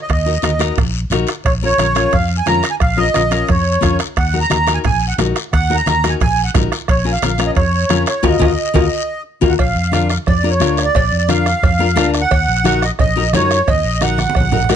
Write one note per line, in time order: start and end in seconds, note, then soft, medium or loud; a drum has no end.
0.02 0.11 D#5 medium
0.09 0.37 D#2 medium
0.09 0.75 D#5 medium
0.09 bombo low medium
0.09 bombo rim medium
0.09 high conga soft
0.09 high timbale medium
0.09 long guiro medium
0.26 0.32 D#4 medium
0.26 0.32 F#4 medium
0.26 0.32 A#4 medium
0.42 0.70 D#2 medium
0.42 0.49 D#4 medium
0.42 0.49 F#4 medium
0.42 0.49 A#4 medium
0.42 bombo rim medium
0.42 high conga medium
0.42 high timbale medium
0.42 short guiro medium
0.59 0.77 D#4 medium
0.59 0.78 F#4 medium
0.59 0.78 A#4 medium
0.59 bombo rim medium
0.59 high timbale medium
0.59 short guiro medium
0.76 1.04 A#1 medium
0.76 bombo low medium
0.76 bombo rim medium
0.76 high conga soft
0.76 low conga medium
0.76 high timbale medium
0.76 long guiro medium
1.10 1.24 A#1 medium
1.10 1.29 D#4 medium
1.10 1.29 F#4 medium
1.10 1.29 A#4 loud
1.10 bombo rim medium
1.10 high conga medium
1.10 low conga medium
1.10 high timbale medium
1.10 short guiro medium
1.27 bombo rim medium
1.27 high timbale medium
1.27 short guiro medium
1.44 1.72 A#1 loud
1.44 1.53 C#5 medium
1.44 bombo low medium
1.44 bombo rim medium
1.44 high conga soft
1.44 high timbale medium
1.44 long guiro medium
1.62 1.68 C#4 medium
1.62 1.68 F4 medium
1.62 1.69 A#4 medium
1.62 2.16 C#5 loud
1.78 2.05 A#1 medium
1.78 1.85 C#4 medium
1.78 1.85 F4 medium
1.78 1.85 A#4 medium
1.78 bombo rim medium
1.78 high conga medium
1.78 high timbale medium
1.78 short guiro medium
1.95 2.13 C#4 medium
1.95 2.14 F4 medium
1.95 2.14 A#4 medium
1.95 bombo rim medium
1.95 high timbale medium
1.95 short guiro medium
2.11 2.40 F2 medium
2.11 2.36 F5 medium
2.11 bombo low medium
2.11 bombo rim medium
2.11 high conga soft
2.11 low conga medium
2.11 high timbale medium
2.11 long guiro medium
2.38 2.48 G#5 medium
2.46 2.60 F2 medium
2.46 2.64 C#4 medium
2.46 2.64 F4 medium
2.46 2.65 A#4 medium
2.46 2.70 A#5 loud
2.46 bombo rim medium
2.46 high conga medium
2.46 high timbale medium
2.46 low timbale medium
2.46 short guiro medium
2.63 bombo rim medium
2.63 high timbale medium
2.63 short guiro medium
2.71 2.75 G#5 medium
2.80 3.08 A#1 loud
2.80 2.99 F5 medium
2.80 bombo low medium
2.80 bombo rim medium
2.80 high conga soft
2.80 high timbale medium
2.80 long guiro medium
2.97 3.03 C#4 medium
2.97 3.03 F4 medium
2.97 3.04 A#4 medium
2.97 3.50 D#5 loud
3.14 3.42 A#1 medium
3.14 3.20 C#4 medium
3.14 3.20 F4 medium
3.14 3.21 A#4 medium
3.14 bombo rim medium
3.14 high conga medium
3.14 high timbale medium
3.14 short guiro medium
3.31 3.49 C#4 medium
3.31 3.49 F4 medium
3.31 3.50 A#4 medium
3.31 bombo rim medium
3.31 high timbale medium
3.31 short guiro medium
3.47 3.76 F2 medium
3.47 3.97 C#5 medium
3.47 bombo low medium
3.47 bombo rim medium
3.47 high conga soft
3.47 low conga medium
3.47 high timbale medium
3.47 long guiro medium
3.81 3.96 F2 medium
3.81 4.00 C#4 medium
3.81 4.00 F4 medium
3.81 4.00 A#4 medium
3.81 bombo low medium
3.81 bombo rim medium
3.81 high conga medium
3.81 low conga medium
3.81 high timbale medium
3.81 short guiro medium
3.99 bombo rim medium
3.99 high timbale medium
3.99 short guiro medium
4.16 4.44 D#2 loud
4.16 4.38 F#5 medium
4.16 bombo low medium
4.16 bombo rim medium
4.16 high conga soft
4.16 high timbale medium
4.16 long guiro medium
4.33 4.39 D#4 medium
4.33 4.39 F#4 medium
4.33 4.40 A#4 medium
4.41 4.72 A#5 loud
4.50 4.77 D#2 medium
4.50 4.56 D#4 medium
4.50 4.56 F#4 medium
4.50 4.56 A#4 medium
4.50 bombo rim medium
4.50 high conga medium
4.50 high timbale medium
4.50 short guiro medium
4.67 4.85 D#4 medium
4.67 4.85 F#4 medium
4.67 4.85 A#4 medium
4.67 bombo rim medium
4.67 high timbale medium
4.67 short guiro medium
4.74 4.79 G#5 medium
4.84 5.12 A#1 medium
4.84 5.06 G#5 medium
4.84 bombo low medium
4.84 bombo rim medium
4.84 high conga soft
4.84 low conga medium
4.84 high timbale medium
4.84 long guiro medium
5.08 5.16 F#5 medium
5.18 5.32 A#1 medium
5.18 5.36 D#4 medium
5.18 5.36 F#4 medium
5.18 5.37 A#4 medium
5.18 bombo rim medium
5.18 high conga medium
5.18 high timbale medium
5.18 low timbale medium
5.18 short guiro medium
5.36 bombo rim medium
5.36 high timbale medium
5.36 short guiro medium
5.53 5.80 D#2 loud
5.53 5.76 F#5 loud
5.53 bombo low medium
5.53 bombo rim medium
5.53 high conga soft
5.53 high timbale medium
5.53 long guiro medium
5.70 5.76 D#4 medium
5.70 5.76 F#4 medium
5.70 5.76 A#4 medium
5.75 6.10 A#5 loud
5.86 6.14 D#2 medium
5.86 5.92 D#4 medium
5.86 5.93 F#4 medium
5.86 5.93 A#4 medium
5.86 bombo rim medium
5.86 high conga medium
5.86 high timbale medium
5.86 short guiro medium
6.04 6.21 D#4 medium
6.04 6.22 F#4 medium
6.04 6.22 A#4 medium
6.04 bombo rim medium
6.04 high timbale medium
6.04 short guiro medium
6.09 6.14 G#5 medium
6.21 6.48 A#1 medium
6.21 6.42 G#5 medium
6.21 bombo low medium
6.21 bombo rim medium
6.21 high conga soft
6.21 low conga medium
6.21 high timbale medium
6.21 long guiro medium
6.44 6.52 F#5 medium
6.54 6.68 A#1 medium
6.54 6.72 D#4 medium
6.54 6.72 F#4 medium
6.54 6.72 A#4 medium
6.54 bombo low medium
6.54 bombo rim medium
6.54 high conga medium
6.54 low conga medium
6.54 high timbale medium
6.54 low timbale medium
6.54 short guiro medium
6.72 bombo rim medium
6.72 high timbale medium
6.72 short guiro medium
6.88 7.15 A#1 loud
6.88 7.05 C#5 medium
6.88 bombo low medium
6.88 bombo rim medium
6.88 high conga soft
6.88 high timbale medium
6.88 long guiro medium
7.04 7.11 C#4 medium
7.04 7.11 F4 medium
7.04 7.11 A#4 medium
7.04 7.12 G#5 medium
7.12 7.43 F5 medium
7.22 7.50 A#1 medium
7.22 7.28 C#4 medium
7.22 7.29 F4 medium
7.22 7.29 A#4 medium
7.22 bombo rim medium
7.22 high conga medium
7.22 high timbale medium
7.22 short guiro medium
7.38 7.57 C#4 medium
7.38 7.57 F4 medium
7.38 7.57 A#4 medium
7.38 bombo rim medium
7.38 high timbale medium
7.38 short guiro medium
7.46 7.51 D#5 medium
7.55 7.83 F2 loud
7.55 8.03 C#5 medium
7.55 bombo low medium
7.55 bombo rim medium
7.55 high conga soft
7.55 low conga medium
7.55 high timbale medium
7.55 long guiro medium
7.89 8.03 F2 medium
7.89 8.08 C#4 medium
7.89 8.08 F4 medium
7.89 8.08 A#4 medium
7.89 bombo rim medium
7.89 high conga medium
7.89 high timbale medium
7.89 short guiro medium
8.06 8.25 C#5 medium
8.06 bombo rim medium
8.06 high timbale medium
8.06 short guiro medium
8.23 8.36 D#2 medium
8.23 8.34 F4 loud
8.23 8.34 F#4 loud
8.23 8.34 A#4 medium
8.23 9.23 D#5 medium
8.23 bombo low loud
8.23 high conga loud
8.23 high timbale loud
8.23 long guiro medium
8.39 8.53 D#2 medium
8.39 8.51 F4 medium
8.39 8.51 F#4 medium
8.39 8.51 A#4 medium
8.39 bombo low loud
8.39 high conga loud
8.39 high timbale loud
8.39 long guiro medium
8.74 8.87 D#2 medium
8.74 8.85 F4 medium
8.74 8.85 F#4 medium
8.74 8.85 A#4 medium
8.74 bombo low medium
8.74 high conga medium
8.74 high timbale medium
8.74 long guiro medium
9.41 9.55 D#2 medium
9.41 9.53 F4 medium
9.41 9.53 F#4 medium
9.41 9.53 A#4 medium
9.41 bombo low medium
9.41 high conga loud
9.41 high timbale medium
9.41 long guiro medium
9.48 9.53 F#5 medium
9.59 9.73 A#1 medium
9.59 10.08 F5 medium
9.59 bombo low medium
9.59 bombo rim medium
9.59 cowbell medium
9.59 high conga soft
9.59 long guiro medium
9.75 10.16 F2 medium
9.92 10.10 D4 medium
9.92 10.11 F4 medium
9.92 10.11 A#4 medium
9.92 bombo rim medium
9.92 cowbell medium
9.92 high conga medium
9.92 short guiro medium
10.10 10.17 F5 medium
10.10 bombo rim medium
10.10 short guiro medium
10.26 10.61 F2 medium
10.26 10.49 D5 medium
10.26 bombo low medium
10.26 bombo rim medium
10.26 cowbell medium
10.26 high conga soft
10.26 low conga medium
10.26 long guiro medium
10.43 10.50 D4 medium
10.43 10.50 F4 medium
10.43 10.50 A#4 medium
10.50 10.82 C#5 medium
10.60 10.88 D2 medium
10.60 10.84 D4 medium
10.60 10.85 F4 medium
10.60 10.85 A#4 medium
10.60 bombo rim medium
10.60 cowbell medium
10.60 high conga medium
10.60 short guiro medium
10.77 bombo rim medium
10.77 short guiro medium
10.84 11.17 D5 medium
10.95 11.09 A#1 medium
10.95 bombo low medium
10.95 bombo rim medium
10.95 cowbell loud
10.95 high conga soft
10.95 low conga medium
10.95 long guiro medium
11.12 11.53 F2 medium
11.18 11.29 D5 medium
11.28 11.47 D4 medium
11.28 11.47 F4 medium
11.28 11.47 A#4 medium
11.28 12.11 F5 medium
11.28 bombo rim medium
11.28 cowbell medium
11.28 high conga medium
11.28 short guiro medium
11.46 bombo rim medium
11.46 short guiro medium
11.63 11.97 F2 loud
11.63 bombo low medium
11.63 bombo rim medium
11.63 cowbell medium
11.63 high conga soft
11.63 low conga medium
11.63 long guiro medium
11.79 11.86 D4 medium
11.79 11.86 F4 medium
11.79 11.86 A#4 medium
11.96 12.24 D2 medium
11.96 12.20 D4 medium
11.96 12.21 F4 medium
11.96 12.21 A#4 medium
11.96 bombo rim medium
11.96 cowbell medium
11.96 high conga medium
11.96 low timbale medium
11.96 short guiro medium
12.14 bombo rim medium
12.14 short guiro medium
12.21 12.85 F#5 loud
12.31 12.45 D#2 medium
12.31 bombo low medium
12.31 bombo rim medium
12.31 cowbell loud
12.31 high conga soft
12.31 long guiro medium
12.48 12.89 A#1 medium
12.64 12.83 D#4 medium
12.64 12.83 F#4 medium
12.64 12.83 A#4 medium
12.64 bombo rim medium
12.64 cowbell medium
12.64 high conga medium
12.64 short guiro medium
12.82 12.91 D#5 medium
12.82 bombo rim medium
12.82 short guiro medium
12.99 13.34 A#1 medium
12.99 13.31 D#5 medium
12.99 bombo low medium
12.99 bombo rim medium
12.99 cowbell medium
12.99 high conga soft
12.99 low conga medium
12.99 long guiro medium
13.16 13.22 D#4 medium
13.16 13.23 F#4 medium
13.16 13.23 A#4 medium
13.33 13.60 F#2 medium
13.33 13.58 D#4 medium
13.33 13.58 F#4 medium
13.33 13.58 A#4 medium
13.33 13.69 C#5 medium
13.33 bombo rim medium
13.33 cowbell medium
13.33 high conga medium
13.33 low timbale medium
13.33 short guiro medium
13.51 bombo rim medium
13.51 short guiro medium
13.68 13.81 D#2 medium
13.68 14.03 D#5 medium
13.68 bombo low medium
13.68 bombo rim medium
13.68 cowbell loud
13.68 high conga soft
13.68 low conga medium
13.68 long guiro medium
13.84 14.25 A#1 medium
14.01 14.19 D#4 medium
14.01 14.19 F#4 medium
14.01 14.20 A#4 medium
14.01 14.76 F#5 medium
14.01 bombo rim medium
14.01 cowbell medium
14.01 high conga medium
14.01 short guiro medium
14.18 bombo rim medium
14.18 high conga medium
14.18 short guiro medium
14.30 high conga medium
14.35 14.70 A#1 medium
14.35 bombo low medium
14.35 bombo rim medium
14.35 cowbell medium
14.35 long guiro medium
14.40 high conga medium
14.52 14.58 D#4 medium
14.52 14.58 F#4 medium
14.52 14.58 A#4 medium
14.52 low conga loud
14.64 low conga medium
14.69 14.76 B1 medium
14.69 14.76 D#4 medium
14.69 14.76 F#4 medium
14.69 14.76 A#4 loud
14.69 bombo rim medium
14.69 cowbell medium
14.69 low timbale medium
14.69 short guiro medium